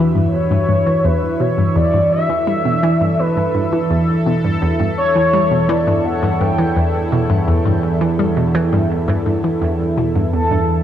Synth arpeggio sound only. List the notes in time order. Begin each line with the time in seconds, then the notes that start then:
0.15 G2
0.51 G2
0.69 G2
0.87 E3
1.04 E2
1.40 B2
1.58 G2
1.76 E2
1.94 G2
2.29 E3
2.47 G3
2.65 B2
2.83 E3
3.01 G2
3.37 G2
3.55 G2
3.73 E3
3.90 E2
4.26 B2
4.44 G2
4.62 E2
4.80 G2
5.16 E3
5.33 G3
5.51 B2
5.69 E3
5.87 G2
6.23 G2
6.41 G2
6.58 E3
6.76 E2
7.12 B2
7.30 G2
7.48 E2
7.65 G2
8.01 E3
8.19 G3
8.37 B2
8.55 E3
8.73 G2
9.08 G2
9.26 G2
9.44 E3
9.62 E2
9.97 B2
10.15 G2
10.33 E2
10.51 G2